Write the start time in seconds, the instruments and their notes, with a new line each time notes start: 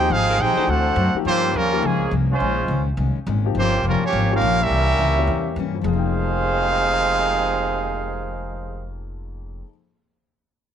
0.00 upright piano A#3 D#4 G4
0.10 upright bass G#1, steel-string acoustic guitar F3 A#3 D#4 G#4, trombone section G#3 C4 F4, trumpet section D#4 G#4 C5 F5
0.29 saxophone section G#3 D#4 G4 A#4
0.38 upright bass A#1, steel-string acoustic guitar F3 A#3 D#4 G#4, trombone section C4 D#4 G4, trumpet section D#4 G#4 C5 G5
0.56 upright piano E3 A3 D4 F#4, saxophone section A3 D4 F#4 C5, muted upright bass stroke
0.67 upright bass D2, steel-string acoustic guitar D3 A3 C4, trombone section A3 C4 F#4, trumpet section D4 A4 C5 F#5
0.72 steel-string acoustic guitar F#4
0.96 upright bass F#2, steel-string acoustic guitar D3 A3 C4 F#4
1.14 upright piano F3 A#3 D#4 G4, muted upright bass stroke
1.25 upright bass G2, steel-string acoustic guitar G2 F3 A#3, trombone section C#3 F3 C4, trumpet section A#3 F4 G4 C5
1.29 steel-string acoustic guitar C#4
1.54 upright bass D#2, steel-string acoustic guitar G2 F3 A#3 C#4, trombone section C#3 F3 A#3, trumpet section G3 C#4 F4 A#4
1.72 upright piano F3 A#3 D#4 G4
1.82 upright bass C#2, steel-string acoustic guitar G2 F3 A#3 C#4, trombone section C#3 F3 G#3, trumpet section A#3 C#4 G#4
2.11 upright bass C2, steel-string acoustic guitar G2 F3 A#3 C#4
2.30 trombone section F3 G#3 C#4, trumpet section G#3 C#4 F4 C5
2.40 upright bass A#1, steel-string acoustic guitar A#2 D#3 G#3 C#4
2.68 upright bass C#2, steel-string acoustic guitar A#2 D#3 G#3 C#4
2.97 upright bass C2, steel-string acoustic guitar A#2 D#3 G#3 C#4
3.16 muted upright bass stroke
3.27 upright bass G#1, steel-string acoustic guitar A#2 D#3 G#3 C#4
3.45 upright piano F3 A#3 D#4 G4
3.55 upright bass G1, steel-string acoustic guitar G2 F3 A#3 C#4, trombone section C#3 F3 C4, trumpet section A#3 F4 G4 C5
3.83 upright bass F1, steel-string acoustic guitar G2 F3 A#3 C#4, trombone section C#3 F3 A#3, trumpet section C#4
3.88 trumpet section G3 F4 A#4
4.02 trombone section F3 A#3 C#4, muted upright bass stroke
4.06 trumpet section A#3 F4 G4 C#5
4.13 upright bass G#1, steel-string acoustic guitar G2 F3 A#3 C#4
4.31 upright piano F3 A#3 D#4 G4, trombone section A#3 C#4 F4, trumpet section C#4 G4 A#4
4.35 trumpet section F5
4.41 upright bass A#1, steel-string acoustic guitar G2 F3 A#3 C#4
4.61 trombone section G3 A#3 E4, trumpet section C#4 G4 A#4 E5
4.70 upright bass C2, steel-string acoustic guitar C3 E3 A#3 C#4
4.99 upright bass C#2, steel-string acoustic guitar C3 E3 A#3 C#4
5.17 upright piano A#3 C#4 E4 G4
5.27 upright bass E2, steel-string acoustic guitar C3 E3 A#3 C#4
5.56 upright bass G2, steel-string acoustic guitar C3 E3 A#3 C#4
5.74 upright piano F2
5.79 upright piano F3, steel-string acoustic guitar F3
5.84 upright bass F1, trombone section F2 C3 D#3 G#3, upright piano G#3, trumpet section D#4 G#4 C5 F5
5.88 steel-string acoustic guitar A#3, upright piano A#3
5.93 steel-string acoustic guitar D#4, upright piano D#4
5.99 upright piano G5